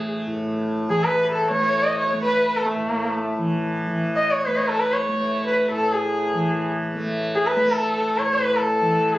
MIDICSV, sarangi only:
0, 0, Header, 1, 2, 480
1, 0, Start_track
1, 0, Tempo, 500000
1, 8814, End_track
2, 0, Start_track
2, 0, Title_t, "Sarangi"
2, 0, Program_c, 0, 110
2, 0, Note_on_c, 0, 68, 64
2, 122, Note_off_c, 0, 68, 0
2, 864, Note_on_c, 0, 68, 82
2, 1000, Note_on_c, 0, 71, 83
2, 1014, Note_off_c, 0, 68, 0
2, 1263, Note_off_c, 0, 71, 0
2, 1269, Note_on_c, 0, 69, 76
2, 1440, Note_off_c, 0, 69, 0
2, 1452, Note_on_c, 0, 73, 86
2, 1755, Note_on_c, 0, 75, 85
2, 1770, Note_off_c, 0, 73, 0
2, 1899, Note_off_c, 0, 75, 0
2, 1903, Note_on_c, 0, 73, 79
2, 2121, Note_off_c, 0, 73, 0
2, 2134, Note_on_c, 0, 71, 91
2, 2463, Note_on_c, 0, 69, 80
2, 2477, Note_off_c, 0, 71, 0
2, 2553, Note_on_c, 0, 57, 71
2, 2568, Note_off_c, 0, 69, 0
2, 3175, Note_off_c, 0, 57, 0
2, 4002, Note_on_c, 0, 75, 82
2, 4140, Note_on_c, 0, 73, 78
2, 4155, Note_off_c, 0, 75, 0
2, 4281, Note_on_c, 0, 71, 75
2, 4295, Note_off_c, 0, 73, 0
2, 4368, Note_on_c, 0, 75, 54
2, 4382, Note_off_c, 0, 71, 0
2, 4385, Note_on_c, 0, 73, 76
2, 4399, Note_off_c, 0, 75, 0
2, 4498, Note_on_c, 0, 69, 76
2, 4512, Note_off_c, 0, 73, 0
2, 4606, Note_on_c, 0, 71, 86
2, 4621, Note_off_c, 0, 69, 0
2, 4728, Note_on_c, 0, 73, 77
2, 4742, Note_off_c, 0, 71, 0
2, 5243, Note_off_c, 0, 73, 0
2, 5253, Note_on_c, 0, 71, 58
2, 5472, Note_off_c, 0, 71, 0
2, 5488, Note_on_c, 0, 69, 78
2, 5686, Note_on_c, 0, 68, 67
2, 5700, Note_off_c, 0, 69, 0
2, 6403, Note_off_c, 0, 68, 0
2, 7058, Note_on_c, 0, 68, 73
2, 7168, Note_on_c, 0, 71, 80
2, 7183, Note_off_c, 0, 68, 0
2, 7416, Note_on_c, 0, 69, 81
2, 7430, Note_off_c, 0, 71, 0
2, 7854, Note_on_c, 0, 73, 76
2, 7868, Note_off_c, 0, 69, 0
2, 8003, Note_on_c, 0, 71, 85
2, 8017, Note_off_c, 0, 73, 0
2, 8218, Note_on_c, 0, 69, 81
2, 8232, Note_off_c, 0, 71, 0
2, 8780, Note_on_c, 0, 68, 73
2, 8794, Note_off_c, 0, 69, 0
2, 8814, Note_off_c, 0, 68, 0
2, 8814, End_track
0, 0, End_of_file